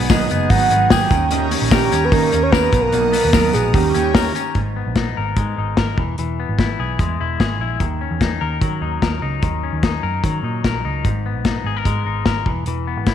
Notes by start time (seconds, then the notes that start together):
Already playing: G#2 B3 D#4 F#4 F#5 G#5 D#6
0.01 B1
0.09 G#2 D#3 F#3 B3 F#4 G#4 D#5, kick, snare, hi-hat pedal, open hi-hat, tambourine
0.30 F#1 F#3 B3 F#4, hi-hat pedal, open hi-hat, tambourine
0.50 G#1 D#3 F#3 B3 D#4 F#4 F#5, kick, hi-hat pedal, open hi-hat
0.70 G#1 F#3 B3 F#4, hi-hat pedal, open hi-hat, tambourine
0.90 G#2 D#3 F#3 B3 F#4 G#4 G5, kick, snare, hi-hat pedal, open hi-hat, tambourine
1.10 D#2 D#3 A#3 C#4 G4 C#5 G5 A#5, kick, hi-hat pedal, open hi-hat, tambourine
1.31 D#3 A#3 C#4 G4, hi-hat pedal, open hi-hat, tambourine
1.50 A#3 C#4 G4, hi-hat pedal, open hi-hat, tambourine
1.62 A#1
1.70 D#3 A#3 C#4 G4 A#4, kick, snare, hi-hat pedal, open hi-hat, tambourine
1.90 D#2 A#3 C#4 G4, hi-hat pedal, open hi-hat, tambourine
2.05 B4
2.10 D#3 A#3 C#4 D#4 G4 A#4, kick, hi-hat pedal, open hi-hat, tambourine
2.31 D#2 A#3 C#4 G4, hi-hat pedal, open hi-hat, tambourine
2.43 C#5
2.52 D#3 A#3 C#4 G4 A#4 B4, kick, snare, hi-hat pedal, open hi-hat, tambourine
2.72 B1 B2 A#3 B3 D#4 F#4 F#5 D#6, kick, hi-hat pedal, open hi-hat, tambourine
2.81 A#4
2.92 B1 B2 F#3 A#3 D#4 F#4, hi-hat pedal, open hi-hat, tambourine
3.12 A#3 B3 D#4 F#4, hi-hat pedal, open hi-hat, tambourine
3.25 D#2
3.33 B2 F#3 A#3 D#4 F#4 A#4, kick, snare, hi-hat pedal, open hi-hat, tambourine
3.52 A#1 A#3 B3 D#4 F#4 G#4, hi-hat pedal, open hi-hat, tambourine
3.73 D#2 D#3 A#3 C#4 G4 C#5 G5, kick, hi-hat pedal, open hi-hat, tambourine
3.94 D#2 A#3 C#4 G4, hi-hat pedal, open hi-hat, tambourine
4.14 D#3 A#3 C#4 G4 A#4, kick, snare, hi-hat pedal, open hi-hat, tambourine
4.34 A#3 C#4 G4, hi-hat pedal, open hi-hat, tambourine
4.55 G#1 G#2, kick, closed hi-hat
4.76 B3
4.86 A#1
4.96 D#4, kick, snare, closed hi-hat
5.17 G#1 A#4
5.37 G#2 G#3, kick, closed hi-hat
5.58 G#1 D#4
5.77 G#1 A#4, kick, snare, closed hi-hat
5.98 E1 E3, kick
6.18 E1 E3, closed hi-hat
6.40 B3
6.49 G#1
6.59 E4, kick, snare, closed hi-hat
6.80 B1 G#4
6.99 E2 G#3, kick, closed hi-hat
7.20 E1 E4
7.40 G#1 G#4, kick, snare, closed hi-hat
7.59 A#1 E4
7.80 D#2 D#3, kick, closed hi-hat
8.01 C#4
8.11 E2
8.21 D#4, kick, snare, closed hi-hat
8.41 D#2 A#4
8.61 D#3 F#3, kick, closed hi-hat
8.81 D#2 D#4
9.02 D#2 A#4, kick, snare, closed hi-hat
9.22 C#2 D#4
9.43 D#2 D#3, kick, closed hi-hat
9.63 C#4
9.73 D#2
9.83 D#4, kick, snare, closed hi-hat
10.03 F#2 A#4
10.24 D#3 F#3, kick, closed hi-hat
10.43 A#2 D#4
10.64 A#1 A#4, kick, snare, closed hi-hat
10.85 C#2 D#4
11.05 G#1 G#2, kick, closed hi-hat
11.26 B3
11.35 A#1
11.45 D#4, kick, snare, closed hi-hat
11.64 G#1 G#4
11.77 A#4
11.85 G#2 G#3, kick, closed hi-hat
12.05 G#1 D#4
12.26 G#1 A#4, kick, snare, closed hi-hat
12.46 E1 E3, kick
12.66 E1 E3, closed hi-hat
12.87 B3
12.97 G#1
13.07 E4, kick, snare, closed hi-hat